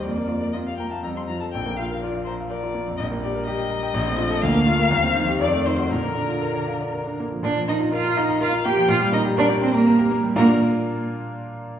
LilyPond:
<<
  \new Staff \with { instrumentName = "Violin" } { \time 3/4 \key bes \major \tempo 4 = 122 d''4 ees''16 f''16 g''16 a''16 bes''16 c'''16 bes''16 a''16 | g''8 f''8 d''8 c''8 d''4 | ees''8 d''8 ees''2 | f''2 d''8 c''8 |
bes'2~ bes'8 r8 | d''8 ees''8 f''8 ees''8 f''8 g''8 | f''8 ees''8 d''8 c''16 bes'8. r8 | bes'8 r2 r8 | }
  \new Staff \with { instrumentName = "Grand piano" } { \time 3/4 \key bes \major f,16 bes16 f'16 bes'16 f'16 f''16 bes''16 f''16 f,16 c'16 f'16 a'16 | bes,,16 bes16 f'16 bes'16 f'16 f''16 bes''16 f''16 bes'16 f'16 bes16 f,16 | bes,,16 bes16 g'16 bes'16 g'16 g''16 bes''16 g''16 bes,,16 c'16 f'16 a'16 | d,16 bes16 f'16 bes'16 ees,16 c'16 ees'16 g'16 f,16 a16 ees'16 ges'16 |
bes,16 bes16 d'16 f'16 bes'16 d''16 f''16 d''16 bes'16 d'16 bes16 f16 | bes,16 f16 bes16 f'16 bes'16 f'16 f''16 bes''16 bes'16 f'16 bes16 f16 | bes,16 g16 bes16 g'16 bes'16 g'16 g''16 bes''16 bes'16 g'16 bes16 g16 | <bes, bes d' f' bes' f''>8 r2 r8 | }
  \new Staff \with { instrumentName = "Cello" } { \time 3/4 \key bes \major bes4 c'8 bes8 g8 f8 | f2. | g2 a4 | bes8 a8 g8 f8 ees4 |
d2~ d8 r8 | d'8 ees'8 f'8 ees'8 f'8 g'8 | f'8 ees'8 d'8 c'16 bes8. r8 | bes8 r2 r8 | }
>>